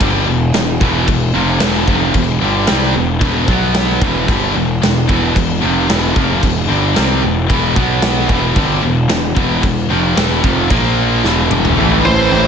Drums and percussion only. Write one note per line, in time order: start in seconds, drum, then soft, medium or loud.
0.01 kick loud
0.01 crash medium
0.54 snare loud
0.54 crash medium
0.81 kick loud
1.08 kick medium
1.08 crash medium
1.60 snare loud
1.60 crash medium
1.88 kick loud
2.14 kick medium
2.14 crash medium
2.67 snare loud
2.67 crash soft
3.21 kick loud
3.21 crash medium
3.48 kick loud
3.74 snare loud
3.74 crash medium
4.02 kick loud
4.28 kick loud
4.28 crash medium
4.83 snare loud
4.83 crash medium
5.09 kick loud
5.36 kick medium
5.36 crash medium
5.90 snare loud
5.90 crash medium
6.16 kick loud
6.43 kick loud
6.43 crash medium
6.96 snare medium
6.96 crash medium
7.50 kick loud
7.50 crash medium
7.76 kick loud
8.02 snare loud
8.02 crash medium
8.29 kick loud
8.56 kick loud
8.56 crash medium
9.09 snare loud
9.09 crash medium
9.37 kick loud
9.63 kick medium
9.63 crash medium
10.17 snare loud
10.17 crash medium
10.44 kick loud
10.70 kick loud
10.70 crash medium
11.24 snare medium
11.51 mid tom medium
11.65 floor tom medium